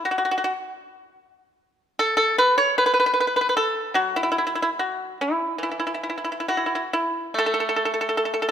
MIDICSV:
0, 0, Header, 1, 2, 480
1, 0, Start_track
1, 0, Tempo, 789474
1, 490, Time_signature, 4, 2, 24, 8
1, 2901, Tempo, 832178
1, 3381, Tempo, 878477
1, 4341, Tempo, 847458
1, 4994, End_track
2, 0, Start_track
2, 0, Title_t, "Pipa"
2, 0, Program_c, 0, 105
2, 31, Note_on_c, 0, 66, 52
2, 60, Note_off_c, 0, 66, 0
2, 68, Note_on_c, 0, 66, 39
2, 102, Note_off_c, 0, 66, 0
2, 110, Note_on_c, 0, 66, 45
2, 145, Note_off_c, 0, 66, 0
2, 152, Note_on_c, 0, 66, 40
2, 183, Note_off_c, 0, 66, 0
2, 191, Note_on_c, 0, 66, 48
2, 222, Note_off_c, 0, 66, 0
2, 229, Note_on_c, 0, 66, 44
2, 261, Note_off_c, 0, 66, 0
2, 268, Note_on_c, 0, 66, 46
2, 313, Note_off_c, 0, 66, 0
2, 1211, Note_on_c, 0, 69, 68
2, 1311, Note_off_c, 0, 69, 0
2, 1319, Note_on_c, 0, 69, 71
2, 1439, Note_off_c, 0, 69, 0
2, 1449, Note_on_c, 0, 71, 70
2, 1564, Note_off_c, 0, 71, 0
2, 1567, Note_on_c, 0, 73, 70
2, 1683, Note_off_c, 0, 73, 0
2, 1690, Note_on_c, 0, 71, 70
2, 1732, Note_off_c, 0, 71, 0
2, 1739, Note_on_c, 0, 71, 49
2, 1778, Note_off_c, 0, 71, 0
2, 1785, Note_on_c, 0, 71, 50
2, 1814, Note_off_c, 0, 71, 0
2, 1822, Note_on_c, 0, 71, 44
2, 1854, Note_off_c, 0, 71, 0
2, 1861, Note_on_c, 0, 71, 52
2, 1899, Note_off_c, 0, 71, 0
2, 1907, Note_on_c, 0, 71, 39
2, 1941, Note_off_c, 0, 71, 0
2, 1948, Note_on_c, 0, 71, 47
2, 1982, Note_off_c, 0, 71, 0
2, 1990, Note_on_c, 0, 71, 43
2, 2035, Note_off_c, 0, 71, 0
2, 2044, Note_on_c, 0, 71, 50
2, 2066, Note_off_c, 0, 71, 0
2, 2074, Note_on_c, 0, 71, 48
2, 2115, Note_off_c, 0, 71, 0
2, 2122, Note_on_c, 0, 71, 45
2, 2166, Note_off_c, 0, 71, 0
2, 2169, Note_on_c, 0, 69, 67
2, 2394, Note_off_c, 0, 69, 0
2, 2398, Note_on_c, 0, 54, 42
2, 2403, Note_on_c, 0, 66, 61
2, 2520, Note_off_c, 0, 66, 0
2, 2531, Note_on_c, 0, 64, 60
2, 2565, Note_off_c, 0, 64, 0
2, 2573, Note_on_c, 0, 64, 43
2, 2617, Note_off_c, 0, 64, 0
2, 2624, Note_on_c, 0, 64, 48
2, 2658, Note_off_c, 0, 64, 0
2, 2665, Note_on_c, 0, 64, 40
2, 2708, Note_off_c, 0, 64, 0
2, 2716, Note_on_c, 0, 64, 45
2, 2756, Note_off_c, 0, 64, 0
2, 2769, Note_on_c, 0, 64, 40
2, 2805, Note_off_c, 0, 64, 0
2, 2811, Note_on_c, 0, 64, 48
2, 2849, Note_off_c, 0, 64, 0
2, 2914, Note_on_c, 0, 66, 51
2, 3129, Note_off_c, 0, 66, 0
2, 3155, Note_on_c, 0, 64, 52
2, 3367, Note_off_c, 0, 64, 0
2, 3370, Note_on_c, 0, 52, 35
2, 3395, Note_on_c, 0, 64, 43
2, 3429, Note_off_c, 0, 64, 0
2, 3442, Note_on_c, 0, 64, 31
2, 3473, Note_off_c, 0, 64, 0
2, 3486, Note_on_c, 0, 64, 38
2, 3517, Note_off_c, 0, 64, 0
2, 3525, Note_on_c, 0, 64, 32
2, 3558, Note_off_c, 0, 64, 0
2, 3567, Note_on_c, 0, 64, 31
2, 3601, Note_off_c, 0, 64, 0
2, 3616, Note_on_c, 0, 64, 29
2, 3643, Note_off_c, 0, 64, 0
2, 3650, Note_on_c, 0, 64, 30
2, 3686, Note_off_c, 0, 64, 0
2, 3694, Note_on_c, 0, 64, 27
2, 3725, Note_off_c, 0, 64, 0
2, 3731, Note_on_c, 0, 64, 33
2, 3765, Note_off_c, 0, 64, 0
2, 3772, Note_on_c, 0, 64, 27
2, 3810, Note_off_c, 0, 64, 0
2, 3816, Note_on_c, 0, 64, 32
2, 3854, Note_off_c, 0, 54, 0
2, 3856, Note_off_c, 0, 64, 0
2, 3862, Note_on_c, 0, 64, 27
2, 3862, Note_on_c, 0, 66, 54
2, 3905, Note_off_c, 0, 64, 0
2, 3910, Note_on_c, 0, 64, 32
2, 3951, Note_off_c, 0, 64, 0
2, 3959, Note_on_c, 0, 64, 28
2, 3997, Note_off_c, 0, 64, 0
2, 4008, Note_on_c, 0, 64, 36
2, 4044, Note_off_c, 0, 64, 0
2, 4088, Note_off_c, 0, 66, 0
2, 4108, Note_on_c, 0, 64, 60
2, 4326, Note_off_c, 0, 64, 0
2, 4331, Note_on_c, 0, 57, 35
2, 4355, Note_on_c, 0, 69, 62
2, 4389, Note_off_c, 0, 69, 0
2, 4399, Note_on_c, 0, 69, 40
2, 4433, Note_off_c, 0, 69, 0
2, 4441, Note_on_c, 0, 69, 46
2, 4471, Note_off_c, 0, 69, 0
2, 4477, Note_on_c, 0, 69, 42
2, 4516, Note_off_c, 0, 69, 0
2, 4527, Note_on_c, 0, 69, 50
2, 4563, Note_off_c, 0, 69, 0
2, 4569, Note_on_c, 0, 69, 43
2, 4606, Note_off_c, 0, 69, 0
2, 4620, Note_on_c, 0, 69, 45
2, 4654, Note_off_c, 0, 69, 0
2, 4668, Note_on_c, 0, 69, 36
2, 4700, Note_off_c, 0, 69, 0
2, 4708, Note_on_c, 0, 69, 45
2, 4742, Note_off_c, 0, 69, 0
2, 4753, Note_on_c, 0, 69, 39
2, 4786, Note_off_c, 0, 69, 0
2, 4799, Note_off_c, 0, 52, 0
2, 4801, Note_on_c, 0, 69, 49
2, 4832, Note_off_c, 0, 69, 0
2, 4846, Note_on_c, 0, 69, 39
2, 4877, Note_off_c, 0, 69, 0
2, 4894, Note_on_c, 0, 69, 48
2, 4922, Note_off_c, 0, 69, 0
2, 4941, Note_on_c, 0, 69, 45
2, 4968, Note_off_c, 0, 69, 0
2, 4994, Note_off_c, 0, 57, 0
2, 4994, End_track
0, 0, End_of_file